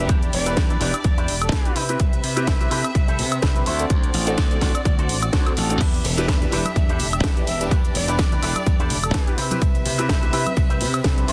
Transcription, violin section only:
0, 0, Header, 1, 2, 480
1, 0, Start_track
1, 0, Key_signature, 1, "minor"
1, 0, Tempo, 476190
1, 94, Time_signature, 4, 2, 24, 8
1, 11417, End_track
2, 0, Start_track
2, 0, Title_t, "Violin section"
2, 0, Program_c, 0, 48
2, 0, Note_on_c, 0, 62, 83
2, 0, Note_on_c, 0, 67, 78
2, 101, Note_on_c, 0, 74, 92
2, 1739, Note_off_c, 0, 67, 0
2, 1740, Note_off_c, 0, 62, 0
2, 1761, Note_off_c, 0, 74, 0
2, 1777, Note_on_c, 0, 60, 90
2, 1777, Note_on_c, 0, 71, 81
2, 1779, Note_on_c, 0, 76, 99
2, 3676, Note_off_c, 0, 71, 0
2, 3677, Note_off_c, 0, 76, 0
2, 3697, Note_on_c, 0, 66, 80
2, 3698, Note_on_c, 0, 74, 95
2, 5815, Note_off_c, 0, 60, 0
2, 5834, Note_off_c, 0, 66, 0
2, 5834, Note_off_c, 0, 74, 0
2, 5851, Note_on_c, 0, 62, 85
2, 5853, Note_on_c, 0, 67, 77
2, 5853, Note_on_c, 0, 76, 93
2, 7754, Note_off_c, 0, 76, 0
2, 7779, Note_on_c, 0, 74, 93
2, 9416, Note_off_c, 0, 62, 0
2, 9417, Note_off_c, 0, 67, 0
2, 9439, Note_off_c, 0, 74, 0
2, 9457, Note_on_c, 0, 76, 100
2, 9459, Note_on_c, 0, 60, 88
2, 9459, Note_on_c, 0, 71, 80
2, 11356, Note_off_c, 0, 76, 0
2, 11357, Note_off_c, 0, 71, 0
2, 11368, Note_on_c, 0, 74, 97
2, 11371, Note_on_c, 0, 66, 81
2, 11417, Note_off_c, 0, 60, 0
2, 11417, Note_off_c, 0, 66, 0
2, 11417, Note_off_c, 0, 74, 0
2, 11417, End_track
0, 0, End_of_file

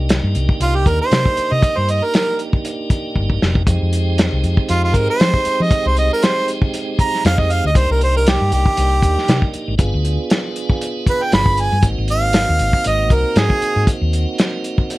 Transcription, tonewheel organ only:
0, 0, Header, 1, 2, 480
1, 0, Start_track
1, 0, Key_signature, -3, "minor"
1, 0, Tempo, 510638
1, 1525, Time_signature, 4, 2, 24, 8
1, 14081, End_track
2, 0, Start_track
2, 0, Title_t, "Tonewheel organ"
2, 0, Program_c, 0, 16
2, 0, Note_on_c, 0, 58, 60
2, 0, Note_on_c, 0, 62, 59
2, 0, Note_on_c, 0, 63, 59
2, 0, Note_on_c, 0, 67, 72
2, 3407, Note_off_c, 0, 58, 0
2, 3408, Note_off_c, 0, 62, 0
2, 3408, Note_off_c, 0, 63, 0
2, 3410, Note_off_c, 0, 67, 0
2, 3441, Note_on_c, 0, 56, 77
2, 3445, Note_on_c, 0, 60, 72
2, 3449, Note_on_c, 0, 63, 68
2, 3450, Note_on_c, 0, 67, 86
2, 7242, Note_off_c, 0, 56, 0
2, 7244, Note_off_c, 0, 60, 0
2, 7246, Note_off_c, 0, 63, 0
2, 7247, Note_off_c, 0, 67, 0
2, 7281, Note_on_c, 0, 58, 67
2, 7284, Note_on_c, 0, 62, 60
2, 7287, Note_on_c, 0, 63, 58
2, 7290, Note_on_c, 0, 67, 68
2, 9161, Note_off_c, 0, 58, 0
2, 9163, Note_off_c, 0, 62, 0
2, 9164, Note_off_c, 0, 63, 0
2, 9166, Note_off_c, 0, 67, 0
2, 9190, Note_on_c, 0, 59, 77
2, 9193, Note_on_c, 0, 62, 67
2, 9197, Note_on_c, 0, 65, 70
2, 9199, Note_on_c, 0, 68, 89
2, 11076, Note_off_c, 0, 59, 0
2, 11077, Note_off_c, 0, 62, 0
2, 11079, Note_off_c, 0, 65, 0
2, 11080, Note_off_c, 0, 68, 0
2, 11106, Note_on_c, 0, 58, 63
2, 11112, Note_on_c, 0, 60, 61
2, 11114, Note_on_c, 0, 63, 56
2, 11116, Note_on_c, 0, 66, 69
2, 14081, Note_off_c, 0, 58, 0
2, 14081, Note_off_c, 0, 60, 0
2, 14081, Note_off_c, 0, 63, 0
2, 14081, Note_off_c, 0, 66, 0
2, 14081, End_track
0, 0, End_of_file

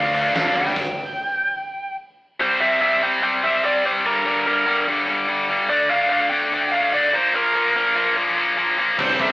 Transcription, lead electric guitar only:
0, 0, Header, 1, 2, 480
1, 0, Start_track
1, 0, Tempo, 411241
1, 891, Time_signature, 4, 2, 24, 8
1, 10878, End_track
2, 0, Start_track
2, 0, Title_t, "Lead electric guitar"
2, 0, Program_c, 0, 29
2, 0, Note_on_c, 0, 77, 107
2, 379, Note_off_c, 0, 77, 0
2, 414, Note_on_c, 0, 77, 99
2, 659, Note_off_c, 0, 77, 0
2, 666, Note_on_c, 0, 79, 98
2, 2292, Note_off_c, 0, 79, 0
2, 2813, Note_on_c, 0, 72, 97
2, 3040, Note_on_c, 0, 76, 94
2, 3059, Note_off_c, 0, 72, 0
2, 3275, Note_off_c, 0, 76, 0
2, 3289, Note_on_c, 0, 76, 101
2, 3535, Note_on_c, 0, 79, 100
2, 3537, Note_off_c, 0, 76, 0
2, 3758, Note_off_c, 0, 79, 0
2, 3773, Note_on_c, 0, 79, 106
2, 3995, Note_off_c, 0, 79, 0
2, 4012, Note_on_c, 0, 76, 102
2, 4235, Note_off_c, 0, 76, 0
2, 4257, Note_on_c, 0, 74, 96
2, 4478, Note_off_c, 0, 74, 0
2, 4500, Note_on_c, 0, 72, 93
2, 4563, Note_off_c, 0, 72, 0
2, 4743, Note_on_c, 0, 70, 93
2, 5197, Note_off_c, 0, 70, 0
2, 5211, Note_on_c, 0, 70, 80
2, 5658, Note_off_c, 0, 70, 0
2, 6647, Note_on_c, 0, 74, 107
2, 6883, Note_off_c, 0, 74, 0
2, 6888, Note_on_c, 0, 77, 101
2, 7103, Note_off_c, 0, 77, 0
2, 7117, Note_on_c, 0, 77, 103
2, 7346, Note_off_c, 0, 77, 0
2, 7346, Note_on_c, 0, 79, 116
2, 7835, Note_on_c, 0, 77, 111
2, 7853, Note_off_c, 0, 79, 0
2, 8090, Note_off_c, 0, 77, 0
2, 8096, Note_on_c, 0, 74, 99
2, 8341, Note_off_c, 0, 74, 0
2, 8343, Note_on_c, 0, 72, 90
2, 8560, Note_off_c, 0, 72, 0
2, 8584, Note_on_c, 0, 70, 97
2, 9051, Note_off_c, 0, 70, 0
2, 9065, Note_on_c, 0, 70, 76
2, 9504, Note_off_c, 0, 70, 0
2, 10517, Note_on_c, 0, 72, 102
2, 10749, Note_off_c, 0, 72, 0
2, 10750, Note_on_c, 0, 76, 99
2, 10812, Note_off_c, 0, 76, 0
2, 10878, End_track
0, 0, End_of_file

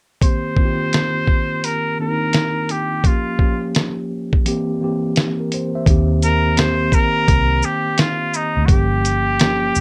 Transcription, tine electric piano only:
0, 0, Header, 1, 2, 480
1, 0, Start_track
1, 0, Key_signature, -3, "major"
1, 0, Tempo, 705882
1, 148, Time_signature, 4, 2, 24, 8
1, 6667, End_track
2, 0, Start_track
2, 0, Title_t, "Tine electric piano"
2, 0, Program_c, 0, 4
2, 149, Note_on_c, 0, 51, 59
2, 154, Note_on_c, 0, 58, 60
2, 161, Note_on_c, 0, 60, 56
2, 167, Note_on_c, 0, 67, 62
2, 291, Control_c, 0, 64, 127
2, 317, Note_off_c, 0, 51, 0
2, 320, Note_off_c, 0, 58, 0
2, 323, Note_off_c, 0, 60, 0
2, 326, Note_off_c, 0, 67, 0
2, 381, Note_on_c, 0, 51, 72
2, 387, Note_on_c, 0, 58, 58
2, 394, Note_on_c, 0, 60, 61
2, 401, Note_on_c, 0, 65, 57
2, 445, Note_on_c, 0, 67, 77
2, 450, Note_off_c, 0, 65, 0
2, 990, Note_off_c, 0, 51, 0
2, 993, Note_off_c, 0, 58, 0
2, 997, Note_off_c, 0, 60, 0
2, 1022, Note_off_c, 0, 67, 0
2, 1355, Note_on_c, 0, 51, 65
2, 1359, Note_on_c, 0, 58, 54
2, 1367, Note_on_c, 0, 60, 51
2, 1373, Note_on_c, 0, 62, 54
2, 1416, Note_off_c, 0, 62, 0
2, 1417, Note_on_c, 0, 63, 63
2, 1798, Note_off_c, 0, 51, 0
2, 1800, Note_off_c, 0, 58, 0
2, 1804, Note_off_c, 0, 60, 0
2, 1829, Note_off_c, 0, 63, 0
2, 2075, Note_on_c, 0, 53, 69
2, 2076, Control_c, 0, 64, 0
2, 2081, Note_on_c, 0, 58, 65
2, 2087, Note_on_c, 0, 61, 66
2, 2095, Note_on_c, 0, 67, 69
2, 2188, Control_c, 0, 64, 127
2, 2240, Note_off_c, 0, 53, 0
2, 2243, Note_off_c, 0, 58, 0
2, 2246, Note_off_c, 0, 61, 0
2, 2250, Note_off_c, 0, 67, 0
2, 2305, Note_on_c, 0, 53, 71
2, 2311, Note_on_c, 0, 58, 61
2, 2317, Note_on_c, 0, 61, 60
2, 2324, Note_on_c, 0, 67, 69
2, 2912, Note_off_c, 0, 53, 0
2, 2915, Note_off_c, 0, 58, 0
2, 2918, Note_off_c, 0, 61, 0
2, 2922, Note_off_c, 0, 67, 0
2, 3027, Note_on_c, 0, 52, 86
2, 3032, Note_on_c, 0, 58, 76
2, 3038, Control_c, 0, 64, 0
2, 3039, Note_on_c, 0, 60, 82
2, 3047, Note_on_c, 0, 67, 101
2, 3161, Control_c, 0, 64, 127
2, 3232, Note_off_c, 0, 52, 0
2, 3234, Note_off_c, 0, 58, 0
2, 3238, Note_off_c, 0, 60, 0
2, 3241, Note_off_c, 0, 67, 0
2, 3272, Note_on_c, 0, 52, 74
2, 3279, Note_on_c, 0, 58, 64
2, 3284, Note_on_c, 0, 60, 63
2, 3291, Note_on_c, 0, 67, 86
2, 3519, Note_off_c, 0, 67, 0
2, 3672, Note_on_c, 0, 70, 57
2, 3675, Note_on_c, 0, 67, 49
2, 3716, Note_off_c, 0, 52, 0
2, 3720, Note_off_c, 0, 58, 0
2, 3723, Note_off_c, 0, 60, 0
2, 3751, Note_off_c, 0, 70, 0
2, 3753, Note_off_c, 0, 67, 0
2, 3768, Note_on_c, 0, 72, 62
2, 3901, Note_off_c, 0, 72, 0
2, 3912, Note_on_c, 0, 76, 66
2, 3915, Note_on_c, 0, 72, 56
2, 3992, Note_on_c, 0, 51, 92
2, 3998, Control_c, 0, 64, 0
2, 3999, Note_on_c, 0, 58, 67
2, 4008, Note_on_c, 0, 60, 76
2, 4013, Note_on_c, 0, 67, 101
2, 4116, Control_c, 0, 64, 127
2, 4133, Note_off_c, 0, 76, 0
2, 4135, Note_off_c, 0, 72, 0
2, 4293, Note_off_c, 0, 51, 0
2, 4296, Note_off_c, 0, 58, 0
2, 4300, Note_off_c, 0, 60, 0
2, 4303, Note_off_c, 0, 67, 0
2, 4460, Note_on_c, 0, 51, 69
2, 4466, Note_on_c, 0, 58, 69
2, 4472, Note_on_c, 0, 60, 70
2, 4480, Note_on_c, 0, 67, 77
2, 5070, Note_off_c, 0, 51, 0
2, 5072, Note_off_c, 0, 58, 0
2, 5076, Note_off_c, 0, 60, 0
2, 5079, Note_off_c, 0, 67, 0
2, 5908, Note_on_c, 0, 53, 70
2, 5914, Note_on_c, 0, 58, 67
2, 5918, Control_c, 0, 64, 0
2, 5920, Note_on_c, 0, 61, 65
2, 5926, Note_on_c, 0, 67, 82
2, 6019, Control_c, 0, 64, 127
2, 6211, Note_off_c, 0, 53, 0
2, 6214, Note_off_c, 0, 58, 0
2, 6217, Note_off_c, 0, 61, 0
2, 6220, Note_off_c, 0, 67, 0
2, 6396, Note_on_c, 0, 53, 74
2, 6404, Note_on_c, 0, 58, 64
2, 6410, Note_on_c, 0, 61, 65
2, 6415, Note_on_c, 0, 67, 82
2, 6667, Note_off_c, 0, 53, 0
2, 6667, Note_off_c, 0, 58, 0
2, 6667, Note_off_c, 0, 61, 0
2, 6667, Note_off_c, 0, 67, 0
2, 6667, End_track
0, 0, End_of_file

